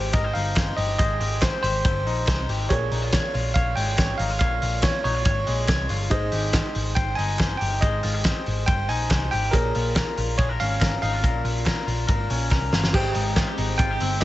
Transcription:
Already playing: G#1 G#3 G4 G#4 C5
0.13 G#1 A#4 D#5, kick, hi-hat pedal, ride
0.24 C5
0.34 G1 D#4 F5, open hi-hat
0.56 C5, kick, snare, clap, hi-hat pedal, ride
0.77 G1 G4 D#5, open hi-hat
0.98 G#1 G#3 C5 D#5, kick, hi-hat pedal, ride
1.20 G#1 G4, open hi-hat
1.41 C5, kick, snare, clap, hi-hat pedal, ride
1.63 G#1 G4 C5, open hi-hat
1.85 G1 C5, kick, hi-hat pedal, ride
2.07 A#1 D#4, open hi-hat
2.27 C2 C5, kick, snare, clap, hi-hat pedal, ride
2.49 G#1 G4, open hi-hat
2.69 A#1 A#2 G#4 A#4 C#5, kick, hi-hat pedal, ride
2.91 A#1 D#4, open hi-hat
3.03 F4
3.12 C#5, kick, snare, clap, hi-hat pedal, ride
3.34 A#1 F4, open hi-hat
3.54 A#1 C#5 F5, kick, hi-hat pedal, ride
3.76 G#1 G#3 G5, open hi-hat
3.98 C#5, kick, snare, clap, hi-hat pedal, ride
4.18 G#1 D#4 F5, open hi-hat
4.30 F4
4.39 A#1 A#2 C#5 F5, kick, hi-hat pedal, ride
4.62 A#1 F4, open hi-hat
4.83 C#5, kick, snare, clap, hi-hat pedal, ride
5.04 A#1 D#4 C#5, open hi-hat
5.15 F4
5.25 G#1 C#5, kick, hi-hat pedal, ride
5.47 A#1 G#3, open hi-hat
5.68 C2 C#5, kick, snare, clap, hi-hat pedal, ride
5.89 G1 F4, open hi-hat
6.10 G#1 G#3 D#4 G#4 C5 D#5, kick, hi-hat pedal, ride
6.32 G#1 G4, open hi-hat
6.53 C5, kick, snare, clap, hi-hat pedal, ride
6.75 G#1, open hi-hat
6.95 G#1 C5 G5, kick, hi-hat pedal, ride
7.15 G1 D#4 G#5, open hi-hat
7.39 C5, kick, snare, clap, ride
7.58 G4 G5, open hi-hat
7.62 G1
7.81 G#1 G#3 C5 D#5, kick, hi-hat pedal, ride
8.03 G#1 F4, open hi-hat
8.14 G4
8.24 C5, kick, snare, clap, hi-hat pedal, ride
8.46 G#1, open hi-hat
8.66 G1 C5 G5, kick, hi-hat pedal, ride
8.88 A#1 D#4 G#5, open hi-hat
9.10 C2 C5, kick, snare, clap, hi-hat pedal, ride
9.31 G#1 G4 G5, open hi-hat
9.51 A#1 A#2 G#4 A#4 C#5, kick, hi-hat pedal, ride
9.75 A#1 F4, open hi-hat
9.96 A#4, kick, snare, clap, hi-hat pedal, ride
10.17 A#1 F4, open hi-hat
10.38 A#1 G#4 C#5, kick, hi-hat pedal, ride
10.49 A#4
10.60 G#1 C#4 F5, open hi-hat
10.81 A#4, kick, snare, clap, hi-hat pedal, ride
11.02 G#1 D#4 F5, open hi-hat
11.13 F4
11.23 A#1 A#2 A#4, kick, hi-hat pedal, ride
11.44 A#1 F4, open hi-hat
11.66 A#4, kick, snare, clap, hi-hat pedal, ride
11.87 A#1 F4, open hi-hat
12.08 G#1 A#4, kick, hi-hat pedal, ride
12.30 A#1 C#4, open hi-hat
12.51 C2 A#4, kick, snare, clap
12.72 G1 F4, snare
12.84 snare
12.92 G#1 G#3 C4 G4 G#4 C5 G5, kick, splash
13.14 G#1 D#4, open hi-hat
13.36 F4, kick, snare, clap, hi-hat pedal, ride
13.47 G4
13.58 G#1 D#4, open hi-hat
13.78 G#1 F4 G5, kick, hi-hat pedal, ride
13.91 G4
14.00 G1 C4, open hi-hat
14.21 D#5, ride

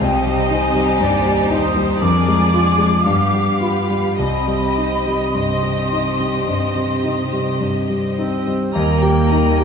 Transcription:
0.01 C2 C3 D#4 G4 C5 D#5 G5
0.26 G3
0.51 D#4 G#5
0.75 G3
1.01 D#2 G2 D5
1.26 G3
1.51 D#4 C5 D#6
1.76 G3
2.02 F2 D4 G#4 A#4 D5 D6
2.28 G#3
2.53 F4 G#4
2.78 G#3
3.06 G2 B3 G4 F5
3.33 G3
3.61 F4 B5
3.89 G3
4.18 C2 C3 C4 G4 D#5 B5
4.48 G3
4.78 D#4
5.07 G3
5.34 G2 C4 G4 D#5 C6
5.63 G3
5.93 D#4
6.20 G3
6.48 G2
6.76 G3
7.04 D#4
7.33 G3
7.60 G2
7.90 G3
8.17 C4 D#4 C5
8.47 G3
8.73 D#2 D#3 G3 A#3 A#4 D#5 G5 A#5
9.01 A#3 G4 A#4 G5
9.30 G3 D#4 D#5 A#5
9.58 A#3 G4 A#4 G5

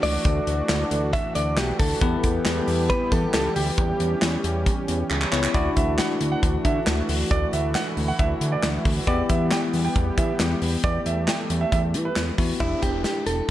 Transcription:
Already playing: E3 A3 D4 E4 F#4 A4
0.03 C#2 D5, open hi-hat
0.25 D2, kick, closed hi-hat
0.47 D2, closed hi-hat
0.69 D2, snare, clap, closed hi-hat
0.91 D2, closed hi-hat
1.13 E5, kick, closed hi-hat
1.35 D2 D5, closed hi-hat
1.57 B1 G4, snare, clap, closed hi-hat
1.79 D2 A4, kick, open hi-hat
2.01 E2 G3 B3 E4 G4 B4, kick, closed hi-hat
2.24 E2, kick, closed hi-hat
2.45 E2, snare, clap, closed hi-hat
2.68 E2, open hi-hat
2.90 B4, kick, closed hi-hat
3.12 E2 A4, kick, closed hi-hat
3.34 C#2 A4, snare, clap, closed hi-hat
3.56 D2 G4, open hi-hat
3.78 E2 C#4, kick, closed hi-hat
4.00 E2, closed hi-hat
4.22 E2, snare, clap, closed hi-hat
4.44 E2, closed hi-hat
4.66 kick, closed hi-hat
4.88 E2, closed hi-hat
5.10 C#2, clap
5.21 clap
5.32 C#2 B3 E4 G4 C#5, clap
5.43 clap
5.54 D2 E3 A3 D4 E4 F#4 D5, kick, closed hi-hat
5.76 D2 E5, kick, closed hi-hat
5.98 F#5, snare, clap, closed hi-hat
6.21 D2, closed hi-hat
6.32 F#5
6.43 D2, kick, closed hi-hat
6.65 D3 E5, kick, closed hi-hat
6.87 D2, snare, clap, closed hi-hat
7.09 D2, open hi-hat
7.31 D2 E4 D5, kick, closed hi-hat
7.53 D2 E5, closed hi-hat
7.75 F#5, snare, clap, closed hi-hat
7.97 D2, open hi-hat
8.08 F#5
8.19 D2 E5, kick, closed hi-hat
8.41 D3, closed hi-hat
8.52 D5
8.63 D2, snare, clap, closed hi-hat
8.85 D2, kick, open hi-hat
9.07 E2 G3 B3 E4 G4 D5, kick
9.29 E2 E5, kick, closed hi-hat
9.51 G5, snare, clap, closed hi-hat
9.73 E2, open hi-hat
9.85 G5
9.96 E2, kick, closed hi-hat
10.18 E3 E5, kick, closed hi-hat
10.40 E2, snare, clap, closed hi-hat
10.62 E2, open hi-hat
10.84 E2 A3 D5, kick, closed hi-hat
11.06 E2 E5, closed hi-hat
11.28 G5, snare, clap, closed hi-hat
11.50 E2, closed hi-hat
11.61 E5
11.72 E2 E5, kick, closed hi-hat
11.94 E3, closed hi-hat
12.05 B4
12.16 E2, snare, clap, closed hi-hat
12.38 E2 B3 E4 F#4, kick, open hi-hat
12.60 E1 D4 E4 G4, kick, closed hi-hat, downlifter
12.82 E1 G4, kick, closed hi-hat
13.04 G4, snare, closed hi-hat
13.26 E1 A4, closed hi-hat

